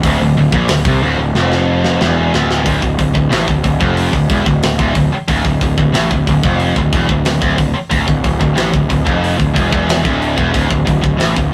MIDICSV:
0, 0, Header, 1, 6, 480
1, 0, Start_track
1, 0, Key_signature, -1, "minor"
1, 0, Tempo, 656455
1, 31, Time_signature, 4, 2, 24, 8
1, 8434, End_track
2, 0, Start_track
2, 0, Title_t, "Distorted electric guitar"
2, 0, Program_c, 0, 30
2, 40, Note_on_c, 0, 38, 118
2, 148, Note_off_c, 0, 38, 0
2, 156, Note_on_c, 0, 38, 65
2, 264, Note_off_c, 0, 38, 0
2, 273, Note_on_c, 0, 38, 78
2, 391, Note_off_c, 0, 38, 0
2, 394, Note_on_c, 0, 46, 104
2, 505, Note_off_c, 0, 46, 0
2, 514, Note_on_c, 0, 38, 63
2, 632, Note_off_c, 0, 38, 0
2, 639, Note_on_c, 0, 48, 97
2, 747, Note_off_c, 0, 48, 0
2, 755, Note_on_c, 0, 38, 108
2, 863, Note_off_c, 0, 38, 0
2, 872, Note_on_c, 0, 38, 71
2, 990, Note_off_c, 0, 38, 0
2, 997, Note_on_c, 0, 41, 107
2, 1465, Note_off_c, 0, 41, 0
2, 1469, Note_on_c, 0, 40, 113
2, 1701, Note_off_c, 0, 40, 0
2, 1716, Note_on_c, 0, 38, 93
2, 1935, Note_off_c, 0, 38, 0
2, 1944, Note_on_c, 0, 38, 103
2, 2054, Note_off_c, 0, 38, 0
2, 2062, Note_on_c, 0, 38, 66
2, 2176, Note_off_c, 0, 38, 0
2, 2185, Note_on_c, 0, 38, 67
2, 2288, Note_off_c, 0, 38, 0
2, 2296, Note_on_c, 0, 38, 60
2, 2413, Note_off_c, 0, 38, 0
2, 2416, Note_on_c, 0, 45, 85
2, 2534, Note_off_c, 0, 45, 0
2, 2539, Note_on_c, 0, 38, 69
2, 2651, Note_off_c, 0, 38, 0
2, 2660, Note_on_c, 0, 38, 77
2, 2774, Note_off_c, 0, 38, 0
2, 2777, Note_on_c, 0, 41, 95
2, 3016, Note_off_c, 0, 41, 0
2, 3025, Note_on_c, 0, 38, 60
2, 3140, Note_off_c, 0, 38, 0
2, 3143, Note_on_c, 0, 40, 88
2, 3256, Note_off_c, 0, 40, 0
2, 3259, Note_on_c, 0, 38, 72
2, 3379, Note_off_c, 0, 38, 0
2, 3387, Note_on_c, 0, 38, 66
2, 3501, Note_off_c, 0, 38, 0
2, 3509, Note_on_c, 0, 38, 102
2, 3619, Note_off_c, 0, 38, 0
2, 3628, Note_on_c, 0, 38, 64
2, 3742, Note_off_c, 0, 38, 0
2, 3865, Note_on_c, 0, 38, 101
2, 3976, Note_off_c, 0, 38, 0
2, 3985, Note_on_c, 0, 38, 66
2, 4100, Note_off_c, 0, 38, 0
2, 4108, Note_on_c, 0, 38, 73
2, 4222, Note_off_c, 0, 38, 0
2, 4230, Note_on_c, 0, 38, 69
2, 4338, Note_off_c, 0, 38, 0
2, 4341, Note_on_c, 0, 45, 81
2, 4458, Note_off_c, 0, 45, 0
2, 4470, Note_on_c, 0, 38, 73
2, 4590, Note_off_c, 0, 38, 0
2, 4600, Note_on_c, 0, 38, 74
2, 4712, Note_off_c, 0, 38, 0
2, 4715, Note_on_c, 0, 41, 93
2, 4945, Note_off_c, 0, 41, 0
2, 4957, Note_on_c, 0, 38, 63
2, 5071, Note_off_c, 0, 38, 0
2, 5074, Note_on_c, 0, 40, 100
2, 5185, Note_off_c, 0, 40, 0
2, 5191, Note_on_c, 0, 38, 74
2, 5297, Note_off_c, 0, 38, 0
2, 5306, Note_on_c, 0, 38, 70
2, 5408, Note_off_c, 0, 38, 0
2, 5416, Note_on_c, 0, 38, 98
2, 5527, Note_off_c, 0, 38, 0
2, 5535, Note_on_c, 0, 38, 70
2, 5650, Note_off_c, 0, 38, 0
2, 5777, Note_on_c, 0, 38, 92
2, 5887, Note_off_c, 0, 38, 0
2, 5896, Note_on_c, 0, 38, 68
2, 6015, Note_off_c, 0, 38, 0
2, 6024, Note_on_c, 0, 38, 81
2, 6131, Note_off_c, 0, 38, 0
2, 6139, Note_on_c, 0, 38, 68
2, 6250, Note_off_c, 0, 38, 0
2, 6253, Note_on_c, 0, 45, 97
2, 6374, Note_off_c, 0, 45, 0
2, 6376, Note_on_c, 0, 38, 81
2, 6495, Note_off_c, 0, 38, 0
2, 6504, Note_on_c, 0, 38, 78
2, 6618, Note_off_c, 0, 38, 0
2, 6621, Note_on_c, 0, 41, 92
2, 6855, Note_off_c, 0, 41, 0
2, 6858, Note_on_c, 0, 38, 65
2, 6971, Note_off_c, 0, 38, 0
2, 6974, Note_on_c, 0, 40, 102
2, 7089, Note_off_c, 0, 40, 0
2, 7098, Note_on_c, 0, 40, 100
2, 7331, Note_off_c, 0, 40, 0
2, 7334, Note_on_c, 0, 38, 96
2, 7577, Note_off_c, 0, 38, 0
2, 7580, Note_on_c, 0, 40, 101
2, 7700, Note_off_c, 0, 40, 0
2, 7706, Note_on_c, 0, 38, 97
2, 7820, Note_off_c, 0, 38, 0
2, 7829, Note_on_c, 0, 38, 61
2, 7930, Note_off_c, 0, 38, 0
2, 7939, Note_on_c, 0, 38, 70
2, 8051, Note_off_c, 0, 38, 0
2, 8059, Note_on_c, 0, 38, 63
2, 8176, Note_off_c, 0, 38, 0
2, 8179, Note_on_c, 0, 45, 86
2, 8300, Note_off_c, 0, 45, 0
2, 8304, Note_on_c, 0, 38, 70
2, 8415, Note_off_c, 0, 38, 0
2, 8434, End_track
3, 0, Start_track
3, 0, Title_t, "Picked electric bass"
3, 0, Program_c, 1, 34
3, 26, Note_on_c, 1, 26, 94
3, 138, Note_off_c, 1, 26, 0
3, 142, Note_on_c, 1, 26, 80
3, 258, Note_off_c, 1, 26, 0
3, 264, Note_on_c, 1, 26, 74
3, 378, Note_off_c, 1, 26, 0
3, 382, Note_on_c, 1, 34, 85
3, 497, Note_off_c, 1, 34, 0
3, 507, Note_on_c, 1, 26, 85
3, 620, Note_off_c, 1, 26, 0
3, 624, Note_on_c, 1, 36, 90
3, 738, Note_off_c, 1, 36, 0
3, 746, Note_on_c, 1, 26, 90
3, 859, Note_off_c, 1, 26, 0
3, 865, Note_on_c, 1, 26, 83
3, 979, Note_off_c, 1, 26, 0
3, 986, Note_on_c, 1, 29, 90
3, 1438, Note_off_c, 1, 29, 0
3, 1473, Note_on_c, 1, 28, 99
3, 1694, Note_off_c, 1, 28, 0
3, 1711, Note_on_c, 1, 26, 91
3, 1933, Note_off_c, 1, 26, 0
3, 1944, Note_on_c, 1, 26, 85
3, 2058, Note_off_c, 1, 26, 0
3, 2065, Note_on_c, 1, 26, 73
3, 2178, Note_off_c, 1, 26, 0
3, 2186, Note_on_c, 1, 26, 68
3, 2299, Note_off_c, 1, 26, 0
3, 2303, Note_on_c, 1, 26, 67
3, 2417, Note_off_c, 1, 26, 0
3, 2429, Note_on_c, 1, 33, 99
3, 2540, Note_off_c, 1, 33, 0
3, 2546, Note_on_c, 1, 26, 63
3, 2658, Note_off_c, 1, 26, 0
3, 2663, Note_on_c, 1, 26, 76
3, 2777, Note_off_c, 1, 26, 0
3, 2783, Note_on_c, 1, 29, 94
3, 3009, Note_off_c, 1, 29, 0
3, 3019, Note_on_c, 1, 26, 71
3, 3135, Note_off_c, 1, 26, 0
3, 3142, Note_on_c, 1, 28, 98
3, 3256, Note_off_c, 1, 28, 0
3, 3264, Note_on_c, 1, 26, 74
3, 3378, Note_off_c, 1, 26, 0
3, 3390, Note_on_c, 1, 26, 86
3, 3498, Note_off_c, 1, 26, 0
3, 3502, Note_on_c, 1, 26, 87
3, 3617, Note_off_c, 1, 26, 0
3, 3623, Note_on_c, 1, 26, 67
3, 3737, Note_off_c, 1, 26, 0
3, 3864, Note_on_c, 1, 26, 85
3, 3978, Note_off_c, 1, 26, 0
3, 3982, Note_on_c, 1, 26, 75
3, 4097, Note_off_c, 1, 26, 0
3, 4102, Note_on_c, 1, 26, 72
3, 4217, Note_off_c, 1, 26, 0
3, 4227, Note_on_c, 1, 26, 73
3, 4340, Note_off_c, 1, 26, 0
3, 4347, Note_on_c, 1, 33, 102
3, 4460, Note_off_c, 1, 33, 0
3, 4468, Note_on_c, 1, 26, 71
3, 4580, Note_off_c, 1, 26, 0
3, 4586, Note_on_c, 1, 26, 71
3, 4699, Note_off_c, 1, 26, 0
3, 4704, Note_on_c, 1, 29, 93
3, 4930, Note_off_c, 1, 29, 0
3, 4942, Note_on_c, 1, 26, 76
3, 5058, Note_off_c, 1, 26, 0
3, 5065, Note_on_c, 1, 28, 107
3, 5179, Note_off_c, 1, 28, 0
3, 5186, Note_on_c, 1, 26, 72
3, 5300, Note_off_c, 1, 26, 0
3, 5304, Note_on_c, 1, 26, 75
3, 5419, Note_off_c, 1, 26, 0
3, 5423, Note_on_c, 1, 26, 85
3, 5538, Note_off_c, 1, 26, 0
3, 5547, Note_on_c, 1, 26, 75
3, 5661, Note_off_c, 1, 26, 0
3, 5786, Note_on_c, 1, 26, 90
3, 5900, Note_off_c, 1, 26, 0
3, 5907, Note_on_c, 1, 26, 78
3, 6021, Note_off_c, 1, 26, 0
3, 6026, Note_on_c, 1, 26, 75
3, 6141, Note_off_c, 1, 26, 0
3, 6148, Note_on_c, 1, 26, 72
3, 6254, Note_off_c, 1, 26, 0
3, 6259, Note_on_c, 1, 33, 96
3, 6377, Note_off_c, 1, 33, 0
3, 6387, Note_on_c, 1, 26, 77
3, 6501, Note_off_c, 1, 26, 0
3, 6508, Note_on_c, 1, 26, 77
3, 6622, Note_off_c, 1, 26, 0
3, 6629, Note_on_c, 1, 29, 91
3, 6854, Note_off_c, 1, 29, 0
3, 6869, Note_on_c, 1, 26, 77
3, 6983, Note_off_c, 1, 26, 0
3, 6992, Note_on_c, 1, 28, 94
3, 7104, Note_off_c, 1, 28, 0
3, 7113, Note_on_c, 1, 28, 90
3, 7337, Note_off_c, 1, 28, 0
3, 7351, Note_on_c, 1, 26, 84
3, 7576, Note_off_c, 1, 26, 0
3, 7592, Note_on_c, 1, 28, 84
3, 7705, Note_off_c, 1, 28, 0
3, 7708, Note_on_c, 1, 26, 94
3, 7823, Note_off_c, 1, 26, 0
3, 7829, Note_on_c, 1, 26, 81
3, 7943, Note_off_c, 1, 26, 0
3, 7952, Note_on_c, 1, 26, 71
3, 8065, Note_off_c, 1, 26, 0
3, 8070, Note_on_c, 1, 26, 69
3, 8184, Note_off_c, 1, 26, 0
3, 8194, Note_on_c, 1, 33, 91
3, 8306, Note_off_c, 1, 33, 0
3, 8310, Note_on_c, 1, 26, 73
3, 8424, Note_off_c, 1, 26, 0
3, 8434, End_track
4, 0, Start_track
4, 0, Title_t, "Muted distorted electric guitar strokes"
4, 3750, Note_on_c, 9, 29, 62
4, 3824, Note_off_c, 9, 29, 0
4, 5658, Note_on_c, 9, 29, 64
4, 5731, Note_off_c, 9, 29, 0
4, 8434, End_track
5, 0, Start_track
5, 0, Title_t, "Muted picked electric bass strokes"
5, 3750, Note_on_c, 9, 29, 37
5, 3823, Note_off_c, 9, 29, 0
5, 5667, Note_on_c, 9, 29, 42
5, 5740, Note_off_c, 9, 29, 0
5, 8434, End_track
6, 0, Start_track
6, 0, Title_t, "Drums"
6, 25, Note_on_c, 9, 36, 110
6, 25, Note_on_c, 9, 46, 67
6, 98, Note_off_c, 9, 36, 0
6, 98, Note_off_c, 9, 46, 0
6, 383, Note_on_c, 9, 36, 109
6, 456, Note_off_c, 9, 36, 0
6, 499, Note_on_c, 9, 46, 65
6, 505, Note_on_c, 9, 38, 119
6, 572, Note_off_c, 9, 46, 0
6, 578, Note_off_c, 9, 38, 0
6, 622, Note_on_c, 9, 36, 119
6, 696, Note_off_c, 9, 36, 0
6, 989, Note_on_c, 9, 38, 71
6, 1062, Note_off_c, 9, 38, 0
6, 1109, Note_on_c, 9, 38, 56
6, 1182, Note_off_c, 9, 38, 0
6, 1349, Note_on_c, 9, 38, 69
6, 1422, Note_off_c, 9, 38, 0
6, 1469, Note_on_c, 9, 38, 92
6, 1542, Note_off_c, 9, 38, 0
6, 1712, Note_on_c, 9, 38, 97
6, 1785, Note_off_c, 9, 38, 0
6, 1832, Note_on_c, 9, 38, 80
6, 1905, Note_off_c, 9, 38, 0
6, 1944, Note_on_c, 9, 36, 98
6, 1947, Note_on_c, 9, 46, 69
6, 2017, Note_off_c, 9, 36, 0
6, 2020, Note_off_c, 9, 46, 0
6, 2064, Note_on_c, 9, 36, 79
6, 2138, Note_off_c, 9, 36, 0
6, 2185, Note_on_c, 9, 36, 83
6, 2190, Note_on_c, 9, 46, 59
6, 2258, Note_off_c, 9, 36, 0
6, 2263, Note_off_c, 9, 46, 0
6, 2304, Note_on_c, 9, 36, 81
6, 2377, Note_off_c, 9, 36, 0
6, 2427, Note_on_c, 9, 46, 71
6, 2433, Note_on_c, 9, 38, 91
6, 2500, Note_off_c, 9, 46, 0
6, 2507, Note_off_c, 9, 38, 0
6, 2544, Note_on_c, 9, 36, 84
6, 2617, Note_off_c, 9, 36, 0
6, 2663, Note_on_c, 9, 36, 81
6, 2664, Note_on_c, 9, 46, 50
6, 2736, Note_off_c, 9, 36, 0
6, 2737, Note_off_c, 9, 46, 0
6, 2783, Note_on_c, 9, 36, 98
6, 2856, Note_off_c, 9, 36, 0
6, 2903, Note_on_c, 9, 46, 81
6, 2976, Note_off_c, 9, 46, 0
6, 3021, Note_on_c, 9, 36, 75
6, 3094, Note_off_c, 9, 36, 0
6, 3142, Note_on_c, 9, 36, 103
6, 3142, Note_on_c, 9, 46, 56
6, 3215, Note_off_c, 9, 36, 0
6, 3215, Note_off_c, 9, 46, 0
6, 3263, Note_on_c, 9, 36, 93
6, 3336, Note_off_c, 9, 36, 0
6, 3383, Note_on_c, 9, 46, 76
6, 3390, Note_on_c, 9, 38, 105
6, 3456, Note_off_c, 9, 46, 0
6, 3463, Note_off_c, 9, 38, 0
6, 3502, Note_on_c, 9, 36, 96
6, 3575, Note_off_c, 9, 36, 0
6, 3618, Note_on_c, 9, 46, 62
6, 3622, Note_on_c, 9, 36, 88
6, 3691, Note_off_c, 9, 46, 0
6, 3695, Note_off_c, 9, 36, 0
6, 3862, Note_on_c, 9, 46, 76
6, 3863, Note_on_c, 9, 36, 99
6, 3935, Note_off_c, 9, 46, 0
6, 3936, Note_off_c, 9, 36, 0
6, 3983, Note_on_c, 9, 36, 78
6, 4056, Note_off_c, 9, 36, 0
6, 4102, Note_on_c, 9, 46, 55
6, 4104, Note_on_c, 9, 36, 86
6, 4175, Note_off_c, 9, 46, 0
6, 4177, Note_off_c, 9, 36, 0
6, 4224, Note_on_c, 9, 36, 84
6, 4297, Note_off_c, 9, 36, 0
6, 4345, Note_on_c, 9, 46, 67
6, 4351, Note_on_c, 9, 38, 97
6, 4418, Note_off_c, 9, 46, 0
6, 4424, Note_off_c, 9, 38, 0
6, 4466, Note_on_c, 9, 36, 87
6, 4539, Note_off_c, 9, 36, 0
6, 4586, Note_on_c, 9, 36, 82
6, 4590, Note_on_c, 9, 46, 57
6, 4659, Note_off_c, 9, 36, 0
6, 4663, Note_off_c, 9, 46, 0
6, 4705, Note_on_c, 9, 36, 105
6, 4778, Note_off_c, 9, 36, 0
6, 4824, Note_on_c, 9, 46, 71
6, 4897, Note_off_c, 9, 46, 0
6, 4945, Note_on_c, 9, 36, 76
6, 5018, Note_off_c, 9, 36, 0
6, 5065, Note_on_c, 9, 36, 105
6, 5067, Note_on_c, 9, 46, 57
6, 5138, Note_off_c, 9, 36, 0
6, 5140, Note_off_c, 9, 46, 0
6, 5184, Note_on_c, 9, 36, 90
6, 5257, Note_off_c, 9, 36, 0
6, 5302, Note_on_c, 9, 46, 80
6, 5309, Note_on_c, 9, 38, 102
6, 5375, Note_off_c, 9, 46, 0
6, 5382, Note_off_c, 9, 38, 0
6, 5423, Note_on_c, 9, 36, 102
6, 5496, Note_off_c, 9, 36, 0
6, 5542, Note_on_c, 9, 46, 54
6, 5545, Note_on_c, 9, 36, 84
6, 5616, Note_off_c, 9, 46, 0
6, 5618, Note_off_c, 9, 36, 0
6, 5784, Note_on_c, 9, 46, 70
6, 5786, Note_on_c, 9, 36, 90
6, 5857, Note_off_c, 9, 46, 0
6, 5859, Note_off_c, 9, 36, 0
6, 5906, Note_on_c, 9, 36, 87
6, 5979, Note_off_c, 9, 36, 0
6, 6027, Note_on_c, 9, 36, 95
6, 6029, Note_on_c, 9, 46, 54
6, 6100, Note_off_c, 9, 36, 0
6, 6102, Note_off_c, 9, 46, 0
6, 6148, Note_on_c, 9, 36, 85
6, 6221, Note_off_c, 9, 36, 0
6, 6266, Note_on_c, 9, 46, 67
6, 6273, Note_on_c, 9, 38, 95
6, 6340, Note_off_c, 9, 46, 0
6, 6346, Note_off_c, 9, 38, 0
6, 6388, Note_on_c, 9, 36, 90
6, 6461, Note_off_c, 9, 36, 0
6, 6508, Note_on_c, 9, 36, 77
6, 6511, Note_on_c, 9, 46, 51
6, 6581, Note_off_c, 9, 36, 0
6, 6584, Note_off_c, 9, 46, 0
6, 6629, Note_on_c, 9, 36, 103
6, 6702, Note_off_c, 9, 36, 0
6, 6756, Note_on_c, 9, 46, 76
6, 6829, Note_off_c, 9, 46, 0
6, 6871, Note_on_c, 9, 36, 81
6, 6944, Note_off_c, 9, 36, 0
6, 6991, Note_on_c, 9, 36, 99
6, 6997, Note_on_c, 9, 46, 57
6, 7065, Note_off_c, 9, 36, 0
6, 7070, Note_off_c, 9, 46, 0
6, 7111, Note_on_c, 9, 36, 103
6, 7184, Note_off_c, 9, 36, 0
6, 7234, Note_on_c, 9, 46, 81
6, 7240, Note_on_c, 9, 38, 120
6, 7307, Note_off_c, 9, 46, 0
6, 7313, Note_off_c, 9, 38, 0
6, 7349, Note_on_c, 9, 36, 94
6, 7422, Note_off_c, 9, 36, 0
6, 7473, Note_on_c, 9, 46, 59
6, 7546, Note_off_c, 9, 46, 0
6, 7588, Note_on_c, 9, 36, 94
6, 7661, Note_off_c, 9, 36, 0
6, 7708, Note_on_c, 9, 36, 92
6, 7711, Note_on_c, 9, 46, 74
6, 7781, Note_off_c, 9, 36, 0
6, 7784, Note_off_c, 9, 46, 0
6, 7828, Note_on_c, 9, 36, 85
6, 7901, Note_off_c, 9, 36, 0
6, 7949, Note_on_c, 9, 36, 97
6, 7954, Note_on_c, 9, 46, 60
6, 8022, Note_off_c, 9, 36, 0
6, 8027, Note_off_c, 9, 46, 0
6, 8070, Note_on_c, 9, 36, 84
6, 8143, Note_off_c, 9, 36, 0
6, 8189, Note_on_c, 9, 46, 75
6, 8196, Note_on_c, 9, 38, 102
6, 8262, Note_off_c, 9, 46, 0
6, 8269, Note_off_c, 9, 38, 0
6, 8310, Note_on_c, 9, 36, 82
6, 8383, Note_off_c, 9, 36, 0
6, 8434, End_track
0, 0, End_of_file